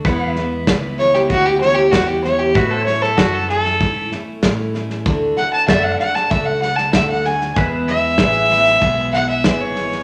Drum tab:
HH |----p-------p---|----p-------p---|----p-------p---|----p-------p---|
SD |o-o-o-ooo-o-o-o-|o-ooo-ooo-o-o-oo|o-o-o-ooo-ooo-oo|o-o-o-ooo-o-o-oo|
BD |o---o---o---o---|o---o---o---o---|o---o---o---o---|o---o---o---o---|